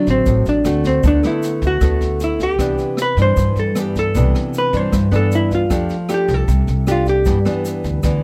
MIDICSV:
0, 0, Header, 1, 5, 480
1, 0, Start_track
1, 0, Tempo, 388601
1, 1282, Time_signature, 4, 2, 24, 8
1, 10169, End_track
2, 0, Start_track
2, 0, Title_t, "Hollow-body jazz guitar"
2, 0, Program_c, 0, 26
2, 128, Note_on_c, 0, 60, 93
2, 553, Note_off_c, 0, 60, 0
2, 604, Note_on_c, 0, 62, 89
2, 1071, Note_off_c, 0, 62, 0
2, 1076, Note_on_c, 0, 60, 82
2, 1283, Note_off_c, 0, 60, 0
2, 1328, Note_on_c, 0, 62, 92
2, 1530, Note_off_c, 0, 62, 0
2, 1568, Note_on_c, 0, 64, 88
2, 2039, Note_off_c, 0, 64, 0
2, 2061, Note_on_c, 0, 66, 97
2, 2761, Note_off_c, 0, 66, 0
2, 2765, Note_on_c, 0, 64, 84
2, 2990, Note_off_c, 0, 64, 0
2, 3003, Note_on_c, 0, 67, 100
2, 3723, Note_off_c, 0, 67, 0
2, 3728, Note_on_c, 0, 71, 93
2, 3930, Note_off_c, 0, 71, 0
2, 3975, Note_on_c, 0, 72, 102
2, 4441, Note_on_c, 0, 69, 87
2, 4442, Note_off_c, 0, 72, 0
2, 4695, Note_off_c, 0, 69, 0
2, 4695, Note_on_c, 0, 67, 92
2, 4915, Note_off_c, 0, 67, 0
2, 4928, Note_on_c, 0, 69, 94
2, 5646, Note_off_c, 0, 69, 0
2, 5662, Note_on_c, 0, 71, 97
2, 5890, Note_off_c, 0, 71, 0
2, 5890, Note_on_c, 0, 72, 104
2, 6360, Note_off_c, 0, 72, 0
2, 6370, Note_on_c, 0, 69, 92
2, 6593, Note_off_c, 0, 69, 0
2, 6612, Note_on_c, 0, 64, 90
2, 6833, Note_off_c, 0, 64, 0
2, 6851, Note_on_c, 0, 65, 86
2, 7567, Note_off_c, 0, 65, 0
2, 7585, Note_on_c, 0, 67, 86
2, 7833, Note_off_c, 0, 67, 0
2, 7833, Note_on_c, 0, 69, 97
2, 8536, Note_off_c, 0, 69, 0
2, 8541, Note_on_c, 0, 65, 87
2, 8737, Note_off_c, 0, 65, 0
2, 8763, Note_on_c, 0, 67, 81
2, 10169, Note_off_c, 0, 67, 0
2, 10169, End_track
3, 0, Start_track
3, 0, Title_t, "Nylon-string guitar"
3, 0, Program_c, 1, 24
3, 0, Note_on_c, 1, 50, 50
3, 0, Note_on_c, 1, 54, 56
3, 0, Note_on_c, 1, 60, 46
3, 0, Note_on_c, 1, 64, 54
3, 300, Note_off_c, 1, 50, 0
3, 330, Note_on_c, 1, 45, 49
3, 768, Note_off_c, 1, 54, 0
3, 772, Note_off_c, 1, 60, 0
3, 775, Note_off_c, 1, 64, 0
3, 782, Note_off_c, 1, 45, 0
3, 802, Note_on_c, 1, 57, 55
3, 803, Note_on_c, 1, 60, 59
3, 812, Note_on_c, 1, 66, 64
3, 1262, Note_off_c, 1, 60, 0
3, 1263, Note_off_c, 1, 57, 0
3, 1268, Note_off_c, 1, 66, 0
3, 1284, Note_on_c, 1, 50, 55
3, 1291, Note_on_c, 1, 57, 54
3, 1293, Note_on_c, 1, 59, 50
3, 1299, Note_on_c, 1, 64, 54
3, 1486, Note_off_c, 1, 57, 0
3, 1489, Note_off_c, 1, 59, 0
3, 1492, Note_off_c, 1, 64, 0
3, 1538, Note_on_c, 1, 57, 54
3, 1539, Note_on_c, 1, 59, 62
3, 1545, Note_on_c, 1, 64, 60
3, 2211, Note_off_c, 1, 59, 0
3, 2212, Note_off_c, 1, 57, 0
3, 2215, Note_off_c, 1, 64, 0
3, 2219, Note_off_c, 1, 50, 0
3, 2245, Note_on_c, 1, 57, 49
3, 2246, Note_on_c, 1, 50, 53
3, 2252, Note_on_c, 1, 59, 49
3, 2253, Note_on_c, 1, 64, 60
3, 3164, Note_off_c, 1, 57, 0
3, 3166, Note_off_c, 1, 59, 0
3, 3169, Note_off_c, 1, 64, 0
3, 3181, Note_off_c, 1, 50, 0
3, 3196, Note_on_c, 1, 48, 55
3, 3203, Note_on_c, 1, 52, 55
3, 3203, Note_on_c, 1, 59, 52
3, 3206, Note_on_c, 1, 62, 59
3, 3677, Note_off_c, 1, 52, 0
3, 3680, Note_off_c, 1, 59, 0
3, 3680, Note_off_c, 1, 62, 0
3, 3925, Note_on_c, 1, 52, 60
3, 3933, Note_on_c, 1, 62, 60
3, 4135, Note_off_c, 1, 48, 0
3, 4163, Note_on_c, 1, 43, 53
3, 4605, Note_off_c, 1, 52, 0
3, 4609, Note_off_c, 1, 62, 0
3, 4639, Note_on_c, 1, 52, 56
3, 4648, Note_on_c, 1, 59, 54
3, 4657, Note_on_c, 1, 62, 54
3, 5082, Note_off_c, 1, 52, 0
3, 5087, Note_off_c, 1, 59, 0
3, 5089, Note_off_c, 1, 62, 0
3, 5098, Note_off_c, 1, 43, 0
3, 5133, Note_on_c, 1, 48, 53
3, 5137, Note_on_c, 1, 52, 49
3, 5137, Note_on_c, 1, 59, 58
3, 5143, Note_on_c, 1, 62, 64
3, 5809, Note_off_c, 1, 52, 0
3, 5812, Note_off_c, 1, 59, 0
3, 5812, Note_off_c, 1, 62, 0
3, 5844, Note_on_c, 1, 52, 60
3, 5855, Note_on_c, 1, 62, 67
3, 6064, Note_off_c, 1, 48, 0
3, 6075, Note_on_c, 1, 43, 51
3, 6285, Note_off_c, 1, 52, 0
3, 6290, Note_off_c, 1, 62, 0
3, 6315, Note_on_c, 1, 52, 62
3, 6318, Note_on_c, 1, 59, 64
3, 6324, Note_on_c, 1, 62, 70
3, 7000, Note_off_c, 1, 52, 0
3, 7001, Note_off_c, 1, 59, 0
3, 7005, Note_off_c, 1, 62, 0
3, 7015, Note_off_c, 1, 43, 0
3, 7040, Note_on_c, 1, 53, 56
3, 7045, Note_on_c, 1, 57, 51
3, 7045, Note_on_c, 1, 62, 54
3, 7050, Note_on_c, 1, 67, 57
3, 7352, Note_off_c, 1, 57, 0
3, 7353, Note_off_c, 1, 62, 0
3, 7354, Note_off_c, 1, 67, 0
3, 7519, Note_on_c, 1, 57, 49
3, 7523, Note_on_c, 1, 62, 50
3, 7528, Note_on_c, 1, 67, 55
3, 7978, Note_off_c, 1, 53, 0
3, 8013, Note_on_c, 1, 48, 51
3, 8443, Note_off_c, 1, 57, 0
3, 8443, Note_off_c, 1, 62, 0
3, 8447, Note_off_c, 1, 67, 0
3, 8487, Note_on_c, 1, 57, 51
3, 8495, Note_on_c, 1, 62, 51
3, 8497, Note_on_c, 1, 67, 65
3, 8944, Note_off_c, 1, 48, 0
3, 8946, Note_off_c, 1, 57, 0
3, 8948, Note_off_c, 1, 62, 0
3, 8951, Note_off_c, 1, 67, 0
3, 8965, Note_on_c, 1, 43, 49
3, 8970, Note_on_c, 1, 52, 48
3, 8974, Note_on_c, 1, 59, 52
3, 8978, Note_on_c, 1, 62, 54
3, 9109, Note_off_c, 1, 52, 0
3, 9109, Note_off_c, 1, 59, 0
3, 9112, Note_off_c, 1, 62, 0
3, 9205, Note_on_c, 1, 52, 59
3, 9210, Note_on_c, 1, 59, 62
3, 9216, Note_on_c, 1, 62, 59
3, 9886, Note_off_c, 1, 52, 0
3, 9889, Note_off_c, 1, 59, 0
3, 9892, Note_off_c, 1, 62, 0
3, 9901, Note_off_c, 1, 43, 0
3, 9921, Note_on_c, 1, 50, 50
3, 9921, Note_on_c, 1, 52, 54
3, 9931, Note_on_c, 1, 59, 52
3, 9933, Note_on_c, 1, 62, 59
3, 10169, Note_off_c, 1, 50, 0
3, 10169, Note_off_c, 1, 52, 0
3, 10169, Note_off_c, 1, 59, 0
3, 10169, Note_off_c, 1, 62, 0
3, 10169, End_track
4, 0, Start_track
4, 0, Title_t, "Upright bass"
4, 0, Program_c, 2, 32
4, 85, Note_on_c, 2, 33, 94
4, 307, Note_off_c, 2, 33, 0
4, 325, Note_on_c, 2, 33, 93
4, 547, Note_off_c, 2, 33, 0
4, 564, Note_on_c, 2, 33, 79
4, 787, Note_off_c, 2, 33, 0
4, 801, Note_on_c, 2, 38, 100
4, 1248, Note_off_c, 2, 38, 0
4, 1277, Note_on_c, 2, 38, 102
4, 1503, Note_off_c, 2, 38, 0
4, 1998, Note_on_c, 2, 38, 99
4, 2223, Note_off_c, 2, 38, 0
4, 2235, Note_on_c, 2, 38, 96
4, 2461, Note_off_c, 2, 38, 0
4, 2481, Note_on_c, 2, 38, 84
4, 3195, Note_off_c, 2, 38, 0
4, 3195, Note_on_c, 2, 36, 95
4, 3421, Note_off_c, 2, 36, 0
4, 3913, Note_on_c, 2, 43, 94
4, 4140, Note_off_c, 2, 43, 0
4, 4158, Note_on_c, 2, 43, 97
4, 4383, Note_off_c, 2, 43, 0
4, 4393, Note_on_c, 2, 43, 84
4, 5120, Note_on_c, 2, 36, 97
4, 5139, Note_off_c, 2, 43, 0
4, 5344, Note_off_c, 2, 36, 0
4, 5841, Note_on_c, 2, 43, 89
4, 6065, Note_off_c, 2, 43, 0
4, 6084, Note_on_c, 2, 43, 98
4, 6306, Note_off_c, 2, 43, 0
4, 6321, Note_on_c, 2, 43, 86
4, 7038, Note_off_c, 2, 43, 0
4, 7038, Note_on_c, 2, 41, 100
4, 7263, Note_off_c, 2, 41, 0
4, 7760, Note_on_c, 2, 36, 97
4, 7985, Note_off_c, 2, 36, 0
4, 8002, Note_on_c, 2, 36, 98
4, 8226, Note_off_c, 2, 36, 0
4, 8250, Note_on_c, 2, 36, 90
4, 8966, Note_on_c, 2, 43, 92
4, 8984, Note_off_c, 2, 36, 0
4, 9188, Note_off_c, 2, 43, 0
4, 9688, Note_on_c, 2, 38, 94
4, 9910, Note_off_c, 2, 38, 0
4, 9924, Note_on_c, 2, 38, 92
4, 10148, Note_off_c, 2, 38, 0
4, 10169, End_track
5, 0, Start_track
5, 0, Title_t, "Drums"
5, 81, Note_on_c, 9, 82, 26
5, 84, Note_on_c, 9, 36, 21
5, 85, Note_on_c, 9, 38, 24
5, 204, Note_off_c, 9, 82, 0
5, 208, Note_off_c, 9, 36, 0
5, 209, Note_off_c, 9, 38, 0
5, 316, Note_on_c, 9, 38, 22
5, 320, Note_on_c, 9, 82, 61
5, 323, Note_on_c, 9, 36, 60
5, 440, Note_off_c, 9, 38, 0
5, 444, Note_off_c, 9, 82, 0
5, 446, Note_off_c, 9, 36, 0
5, 561, Note_on_c, 9, 82, 27
5, 563, Note_on_c, 9, 38, 22
5, 684, Note_off_c, 9, 82, 0
5, 686, Note_off_c, 9, 38, 0
5, 797, Note_on_c, 9, 37, 59
5, 797, Note_on_c, 9, 38, 25
5, 799, Note_on_c, 9, 82, 60
5, 921, Note_off_c, 9, 37, 0
5, 921, Note_off_c, 9, 38, 0
5, 922, Note_off_c, 9, 82, 0
5, 1037, Note_on_c, 9, 82, 25
5, 1038, Note_on_c, 9, 36, 23
5, 1038, Note_on_c, 9, 38, 26
5, 1161, Note_off_c, 9, 82, 0
5, 1162, Note_off_c, 9, 36, 0
5, 1162, Note_off_c, 9, 38, 0
5, 1274, Note_on_c, 9, 82, 64
5, 1279, Note_on_c, 9, 36, 57
5, 1280, Note_on_c, 9, 38, 23
5, 1398, Note_off_c, 9, 82, 0
5, 1403, Note_off_c, 9, 36, 0
5, 1404, Note_off_c, 9, 38, 0
5, 1521, Note_on_c, 9, 82, 25
5, 1523, Note_on_c, 9, 37, 54
5, 1523, Note_on_c, 9, 38, 24
5, 1644, Note_off_c, 9, 82, 0
5, 1646, Note_off_c, 9, 37, 0
5, 1646, Note_off_c, 9, 38, 0
5, 1759, Note_on_c, 9, 82, 60
5, 1765, Note_on_c, 9, 38, 25
5, 1883, Note_off_c, 9, 82, 0
5, 1888, Note_off_c, 9, 38, 0
5, 1995, Note_on_c, 9, 38, 22
5, 1997, Note_on_c, 9, 36, 21
5, 2005, Note_on_c, 9, 82, 26
5, 2118, Note_off_c, 9, 38, 0
5, 2121, Note_off_c, 9, 36, 0
5, 2129, Note_off_c, 9, 82, 0
5, 2234, Note_on_c, 9, 82, 60
5, 2236, Note_on_c, 9, 36, 54
5, 2236, Note_on_c, 9, 37, 54
5, 2236, Note_on_c, 9, 38, 22
5, 2357, Note_off_c, 9, 82, 0
5, 2360, Note_off_c, 9, 36, 0
5, 2360, Note_off_c, 9, 37, 0
5, 2360, Note_off_c, 9, 38, 0
5, 2480, Note_on_c, 9, 38, 22
5, 2483, Note_on_c, 9, 82, 26
5, 2603, Note_off_c, 9, 38, 0
5, 2606, Note_off_c, 9, 82, 0
5, 2717, Note_on_c, 9, 38, 24
5, 2717, Note_on_c, 9, 82, 58
5, 2841, Note_off_c, 9, 38, 0
5, 2841, Note_off_c, 9, 82, 0
5, 2957, Note_on_c, 9, 36, 23
5, 2959, Note_on_c, 9, 38, 25
5, 2959, Note_on_c, 9, 82, 24
5, 3081, Note_off_c, 9, 36, 0
5, 3082, Note_off_c, 9, 38, 0
5, 3083, Note_off_c, 9, 82, 0
5, 3194, Note_on_c, 9, 37, 57
5, 3194, Note_on_c, 9, 38, 23
5, 3196, Note_on_c, 9, 36, 61
5, 3207, Note_on_c, 9, 82, 57
5, 3318, Note_off_c, 9, 37, 0
5, 3318, Note_off_c, 9, 38, 0
5, 3319, Note_off_c, 9, 36, 0
5, 3330, Note_off_c, 9, 82, 0
5, 3435, Note_on_c, 9, 82, 26
5, 3437, Note_on_c, 9, 38, 22
5, 3558, Note_off_c, 9, 82, 0
5, 3560, Note_off_c, 9, 38, 0
5, 3670, Note_on_c, 9, 37, 61
5, 3670, Note_on_c, 9, 38, 23
5, 3683, Note_on_c, 9, 82, 64
5, 3793, Note_off_c, 9, 37, 0
5, 3793, Note_off_c, 9, 38, 0
5, 3806, Note_off_c, 9, 82, 0
5, 3916, Note_on_c, 9, 38, 22
5, 3917, Note_on_c, 9, 36, 22
5, 3920, Note_on_c, 9, 82, 27
5, 4040, Note_off_c, 9, 38, 0
5, 4041, Note_off_c, 9, 36, 0
5, 4043, Note_off_c, 9, 82, 0
5, 4157, Note_on_c, 9, 38, 24
5, 4157, Note_on_c, 9, 82, 66
5, 4159, Note_on_c, 9, 36, 59
5, 4280, Note_off_c, 9, 82, 0
5, 4281, Note_off_c, 9, 38, 0
5, 4283, Note_off_c, 9, 36, 0
5, 4401, Note_on_c, 9, 82, 26
5, 4403, Note_on_c, 9, 38, 24
5, 4525, Note_off_c, 9, 82, 0
5, 4526, Note_off_c, 9, 38, 0
5, 4637, Note_on_c, 9, 37, 62
5, 4637, Note_on_c, 9, 38, 24
5, 4642, Note_on_c, 9, 82, 65
5, 4760, Note_off_c, 9, 37, 0
5, 4760, Note_off_c, 9, 38, 0
5, 4765, Note_off_c, 9, 82, 0
5, 4883, Note_on_c, 9, 36, 25
5, 4883, Note_on_c, 9, 82, 25
5, 4886, Note_on_c, 9, 38, 25
5, 5007, Note_off_c, 9, 36, 0
5, 5007, Note_off_c, 9, 82, 0
5, 5009, Note_off_c, 9, 38, 0
5, 5122, Note_on_c, 9, 82, 60
5, 5124, Note_on_c, 9, 38, 23
5, 5125, Note_on_c, 9, 36, 60
5, 5246, Note_off_c, 9, 82, 0
5, 5248, Note_off_c, 9, 36, 0
5, 5248, Note_off_c, 9, 38, 0
5, 5372, Note_on_c, 9, 37, 59
5, 5372, Note_on_c, 9, 38, 25
5, 5374, Note_on_c, 9, 82, 25
5, 5495, Note_off_c, 9, 37, 0
5, 5495, Note_off_c, 9, 38, 0
5, 5497, Note_off_c, 9, 82, 0
5, 5603, Note_on_c, 9, 82, 63
5, 5613, Note_on_c, 9, 38, 26
5, 5726, Note_off_c, 9, 82, 0
5, 5736, Note_off_c, 9, 38, 0
5, 5842, Note_on_c, 9, 38, 21
5, 5844, Note_on_c, 9, 36, 23
5, 5847, Note_on_c, 9, 82, 28
5, 5966, Note_off_c, 9, 38, 0
5, 5967, Note_off_c, 9, 36, 0
5, 5970, Note_off_c, 9, 82, 0
5, 6082, Note_on_c, 9, 37, 55
5, 6082, Note_on_c, 9, 38, 24
5, 6083, Note_on_c, 9, 36, 56
5, 6086, Note_on_c, 9, 82, 63
5, 6206, Note_off_c, 9, 37, 0
5, 6206, Note_off_c, 9, 38, 0
5, 6207, Note_off_c, 9, 36, 0
5, 6209, Note_off_c, 9, 82, 0
5, 6320, Note_on_c, 9, 38, 22
5, 6330, Note_on_c, 9, 82, 25
5, 6443, Note_off_c, 9, 38, 0
5, 6454, Note_off_c, 9, 82, 0
5, 6562, Note_on_c, 9, 38, 25
5, 6566, Note_on_c, 9, 82, 65
5, 6685, Note_off_c, 9, 38, 0
5, 6690, Note_off_c, 9, 82, 0
5, 6804, Note_on_c, 9, 36, 24
5, 6806, Note_on_c, 9, 82, 26
5, 6807, Note_on_c, 9, 38, 24
5, 6928, Note_off_c, 9, 36, 0
5, 6930, Note_off_c, 9, 82, 0
5, 6931, Note_off_c, 9, 38, 0
5, 7043, Note_on_c, 9, 36, 57
5, 7043, Note_on_c, 9, 37, 61
5, 7043, Note_on_c, 9, 38, 23
5, 7046, Note_on_c, 9, 82, 65
5, 7166, Note_off_c, 9, 36, 0
5, 7166, Note_off_c, 9, 37, 0
5, 7166, Note_off_c, 9, 38, 0
5, 7170, Note_off_c, 9, 82, 0
5, 7278, Note_on_c, 9, 82, 25
5, 7282, Note_on_c, 9, 38, 22
5, 7401, Note_off_c, 9, 82, 0
5, 7406, Note_off_c, 9, 38, 0
5, 7519, Note_on_c, 9, 37, 63
5, 7519, Note_on_c, 9, 38, 25
5, 7524, Note_on_c, 9, 82, 64
5, 7642, Note_off_c, 9, 37, 0
5, 7642, Note_off_c, 9, 38, 0
5, 7648, Note_off_c, 9, 82, 0
5, 7762, Note_on_c, 9, 38, 21
5, 7762, Note_on_c, 9, 82, 28
5, 7763, Note_on_c, 9, 36, 22
5, 7885, Note_off_c, 9, 38, 0
5, 7885, Note_off_c, 9, 82, 0
5, 7887, Note_off_c, 9, 36, 0
5, 8004, Note_on_c, 9, 36, 57
5, 8009, Note_on_c, 9, 38, 23
5, 8009, Note_on_c, 9, 82, 59
5, 8128, Note_off_c, 9, 36, 0
5, 8133, Note_off_c, 9, 38, 0
5, 8133, Note_off_c, 9, 82, 0
5, 8242, Note_on_c, 9, 38, 22
5, 8244, Note_on_c, 9, 82, 28
5, 8365, Note_off_c, 9, 38, 0
5, 8368, Note_off_c, 9, 82, 0
5, 8485, Note_on_c, 9, 37, 58
5, 8485, Note_on_c, 9, 38, 25
5, 8487, Note_on_c, 9, 82, 60
5, 8609, Note_off_c, 9, 37, 0
5, 8609, Note_off_c, 9, 38, 0
5, 8611, Note_off_c, 9, 82, 0
5, 8718, Note_on_c, 9, 82, 24
5, 8724, Note_on_c, 9, 36, 23
5, 8730, Note_on_c, 9, 38, 23
5, 8842, Note_off_c, 9, 82, 0
5, 8848, Note_off_c, 9, 36, 0
5, 8854, Note_off_c, 9, 38, 0
5, 8955, Note_on_c, 9, 82, 62
5, 8964, Note_on_c, 9, 36, 61
5, 8965, Note_on_c, 9, 38, 22
5, 9079, Note_off_c, 9, 82, 0
5, 9088, Note_off_c, 9, 36, 0
5, 9089, Note_off_c, 9, 38, 0
5, 9208, Note_on_c, 9, 82, 27
5, 9209, Note_on_c, 9, 37, 56
5, 9209, Note_on_c, 9, 38, 22
5, 9331, Note_off_c, 9, 82, 0
5, 9332, Note_off_c, 9, 37, 0
5, 9332, Note_off_c, 9, 38, 0
5, 9449, Note_on_c, 9, 82, 68
5, 9450, Note_on_c, 9, 38, 24
5, 9572, Note_off_c, 9, 82, 0
5, 9573, Note_off_c, 9, 38, 0
5, 9683, Note_on_c, 9, 82, 26
5, 9685, Note_on_c, 9, 36, 22
5, 9690, Note_on_c, 9, 38, 21
5, 9806, Note_off_c, 9, 82, 0
5, 9809, Note_off_c, 9, 36, 0
5, 9814, Note_off_c, 9, 38, 0
5, 9918, Note_on_c, 9, 82, 64
5, 9921, Note_on_c, 9, 37, 55
5, 9921, Note_on_c, 9, 38, 24
5, 9925, Note_on_c, 9, 36, 59
5, 10041, Note_off_c, 9, 82, 0
5, 10045, Note_off_c, 9, 37, 0
5, 10045, Note_off_c, 9, 38, 0
5, 10049, Note_off_c, 9, 36, 0
5, 10169, End_track
0, 0, End_of_file